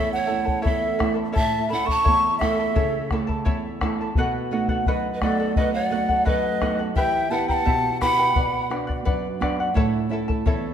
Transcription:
Already playing: E2 A3 C#4 E4 A4 C#5 E5 A5
0.12 C#5 F#5
0.26 A3 C#4 E4 A4 E5 A5
0.45 E4 A4 A5, bombo low
0.62 E2 E4 A4 C#5 E5 A5, bombo low
0.66 A4
0.99 A3 C#4 E4 A4 E5 A5, bombo rim, bombo low
1.14 E4 A4 A5
1.32 A2 E4 A4 C#5 E5 A5, bombo low
1.38 E5
1.69 A3 C#4 E4 A4 E5 A5 B5
1.73 E4 F#5
1.85 E4 A4 A5 C#6, bombo low
1.90 A5
2.04 E2 E4 A4 C#5 E5 A5, bombo low
2.38 A3 C#4 E4 A4 E5 A5, bombo rim, bombo low
2.59 E4 A4 A5
2.75 C#3 E4 A4 C#5 E5 A5, bombo low
3.11 A3 C#4 E4 A4 E5 A5, bombo rim, bombo low
3.27 E4 A4 A5, bombo low
3.45 E2 E4 A4 C#5 E5 A5, bombo low
3.81 A3 C#4 E4 A4 E5 A5, bombo rim, bombo low
4.01 E4 A4 A5
4.15 B2 F#4 A4 B4 D#5 F#5, bombo low
4.51 A3 B3 D#4 F#4 A4 D#5 F#5
4.68 F#4 A4 F#5, bombo low
4.86 F#2 F#4 A4 B4 D#5 F#5, bombo low
5.14 B4 D#5
5.21 A3 B3 D#4 F#4 A4 D5 D#5 F#5, bombo rim, bombo low
5.40 F#4 A4 F#5
5.55 F#2 F#4 A4 B4 D#5 F#5, bombo low
5.74 D5 F#5
5.91 A3 B3 D#4 F#4 A4 D#5 F#5
6.09 F#4 A4 F#5, bombo low
6.25 F#2 F#4 A4 B4 D#5 F#5, bombo low
6.61 A3 B3 D#4 F#4 A4 D#5 F#5, bombo rim, bombo low
6.79 F#4 A4 F#5
6.96 E3 E4 G4 B4 E5 G5, bombo low
7.30 B3 E4 G4 B4 E5 F#5 G5 A5
7.48 E4 B4 F#5 G5 A#5, bombo low
7.53 A5
7.66 B2 E4 G4 B4 E5, bombo low
8.01 B3 E4 G4 B4 E5 F#5 G5 B5, bombo rim, bombo low
8.19 E4 B4 G5
8.35 B2 B4 D5 F#5, bombo low
8.70 B3 D4 F#4 B4 D5 F#5, bombo rim
8.87 D5 F#5, bombo low
9.05 F#2 B4 D5 F#5, bombo low
9.40 B3 D4 F#4 B4 D5 F#5, bombo rim, bombo low
9.60 D5 F#5
9.74 A2 E4 A4 C#5 E5 A5, bombo low
10.09 A3 C#4 E4 A4 E5
10.13 A5
10.28 E4 A4 A5, bombo low
10.46 E2 E4 A4 C#5 E5 A5, bombo low

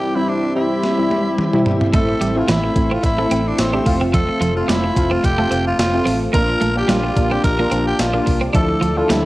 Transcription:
Already playing: G3 C4 E4 G4 C5 E5 C6
0.15 G3 C4 E4
0.29 D4
0.56 G3 C4 E4
0.83 snare
0.98 G3 C4 E4
1.11 high tom
1.38 mid tom
1.53 G3 C4 E4, mid tom
1.66 floor tom
1.81 floor tom
1.93 A1 A3 C4 E4 A4, kick, closed hi-hat, cowbell
2.09 muted clean electric guitar stroke
2.21 A1 G3, closed hi-hat
2.35 A3 C4 E4 F4
2.48 A1 E3 E4, snare, closed hi-hat, tambourine, cowbell
2.64 muted clean electric guitar stroke
2.75 A1 A3 C4 E4, kick, closed hi-hat
2.91 C4 F4
3.03 A1 E4, muted clean electric guitar stroke, kick, closed hi-hat, cowbell
3.18 A3 C4 E4
3.31 A1 C4, closed hi-hat
3.48 D4
3.58 A1 C4, snare, closed hi-hat, tambourine, cowbell
3.73 A3 C4 D4 G4
3.86 F1 A3 C4 F4 A5, muted clean electric guitar stroke, kick, open hi-hat
4.01 C4
4.14 F3 A4, kick, closed hi-hat, cowbell
4.29 muted clean electric guitar stroke
4.41 F1 F3, closed hi-hat
4.56 A3 C4 F4
4.68 F1 G3 E4, snare, closed hi-hat, tambourine, cowbell
4.84 muted clean electric guitar stroke
4.96 F1 A3 C4 F4, kick, closed hi-hat
5.11 C4 F4
5.24 F1 G4, muted clean electric guitar stroke, kick, closed hi-hat, cowbell
5.38 A3 C4 F4
5.51 F1 C4, closed hi-hat
5.67 F4
5.79 F1 F4, snare, closed hi-hat, tambourine, cowbell
5.94 A3 C4 F4
6.06 A1 C4, open hi-hat
6.33 A#1 A#3 D4 F4 A#4 D5 D6, kick, closed hi-hat, cowbell
6.49 muted clean electric guitar stroke
6.61 A#1 A3, closed hi-hat
6.76 A#3 D4 G4
6.88 A#1 G3 F4, snare, closed hi-hat, tambourine, cowbell
7.04 muted clean electric guitar stroke
7.16 A#1 A#3 D4 F4, kick, closed hi-hat
7.31 C4 G4
7.44 A#1 A#4, muted clean electric guitar stroke, kick, closed hi-hat, cowbell
7.59 A#3 D4 F4
7.71 A#1 C4, closed hi-hat
7.87 G4
7.99 A#1 F4, snare, closed hi-hat, tambourine, cowbell
8.14 A#3 D4 F4
8.26 C2, muted clean electric guitar stroke, kick, open hi-hat
8.41 C4
8.53 D2 F3 A3 D4 E4 A4 E5, kick, closed hi-hat, cowbell
8.69 muted clean electric guitar stroke
8.81 D2 F3, closed hi-hat
8.97 F3 A3 D4 E4 F4 A4
9.09 D2 G3 E4, snare, closed hi-hat, tambourine, cowbell

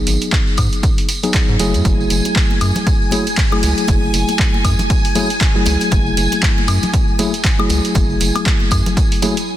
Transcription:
Already playing: F#3 B3 D#4 G#4
0.07 G#1, open hi-hat, tambourine
0.22 closed hi-hat, tambourine
0.32 kick, clap, tambourine
0.47 tambourine
0.57 G#2, kick, open hi-hat, tambourine, high woodblock
0.73 closed hi-hat, tambourine
0.83 kick, closed hi-hat, tambourine
0.98 open hi-hat, tambourine
1.09 open hi-hat, tambourine
1.23 F#3 B3 D#4 G#4, closed hi-hat, tambourine
1.34 kick, clap, closed hi-hat, tambourine
1.48 G#2, tambourine
1.59 F#1 F#3 A3 E4 G#4, open hi-hat, tambourine
1.74 F#2, closed hi-hat, tambourine
1.85 F#1 G#5, kick, closed hi-hat, tambourine, high conga
2.00 tambourine
2.10 F#1, open hi-hat, tambourine, muted conga
2.25 closed hi-hat, tambourine, muted conga
2.36 kick, clap, tambourine
2.51 tambourine, high conga
2.61 F#2, open hi-hat, tambourine, high woodblock
2.76 closed hi-hat, tambourine, low conga
2.87 kick, closed hi-hat, tambourine
3.02 tambourine
3.11 F#3 A3 E4 G#4, open hi-hat, tambourine, high conga
3.27 closed hi-hat, tambourine
3.37 kick, clap, closed hi-hat, tambourine
3.52 F#3 A3 E4 G#4, tambourine, muted conga, high woodblock
3.63 C#2, open hi-hat, tambourine
3.77 closed hi-hat, tambourine
3.88 F#1, kick, closed hi-hat, tambourine, high conga
4.02 tambourine
4.14 F#1, open hi-hat, tambourine, muted conga
4.28 closed hi-hat, tambourine, muted conga
4.39 kick, clap, tambourine
4.54 tambourine, high conga
4.65 F#2, kick, open hi-hat, tambourine, high woodblock
4.79 closed hi-hat, tambourine, low conga
4.90 kick, closed hi-hat, tambourine
5.04 open hi-hat, tambourine
5.15 F#3 A3 E4 G#4, open hi-hat, tambourine, high conga
5.30 closed hi-hat, tambourine
5.41 kick, clap, closed hi-hat, tambourine
5.55 F#3 A3 E4 G#4, tambourine
5.65 C#2, open hi-hat, tambourine, muted conga
5.81 closed hi-hat, tambourine, muted conga
5.91 F#1, kick, closed hi-hat, tambourine, high conga
6.06 tambourine
6.17 F#1, open hi-hat, tambourine, muted conga
6.32 closed hi-hat, tambourine, muted conga
6.42 kick, clap, tambourine
6.57 tambourine, high conga
6.68 F#2, open hi-hat, tambourine, high woodblock
6.83 closed hi-hat, tambourine, low conga
6.93 kick, closed hi-hat, tambourine
7.08 tambourine
7.19 F#3 A3 E4 G#4, open hi-hat, tambourine, high conga
7.34 closed hi-hat, tambourine
7.44 kick, clap, closed hi-hat, tambourine
7.58 F#3 A3 E4 G#4, tambourine, muted conga, high woodblock
7.69 C#2, open hi-hat, tambourine
7.85 closed hi-hat, tambourine
7.95 F#1, kick, closed hi-hat, tambourine, high conga
8.10 tambourine
8.20 F#1, open hi-hat, tambourine, muted conga
8.35 closed hi-hat, tambourine, muted conga, high woodblock
8.46 kick, clap, closed hi-hat, tambourine
8.60 tambourine, high conga
8.71 F#2, kick, open hi-hat, tambourine, high woodblock
8.86 closed hi-hat, tambourine, low conga
8.97 kick, closed hi-hat, tambourine
9.11 open hi-hat, tambourine
9.22 F#3 A3 E4 G#4, open hi-hat, tambourine, high conga
9.37 closed hi-hat, tambourine

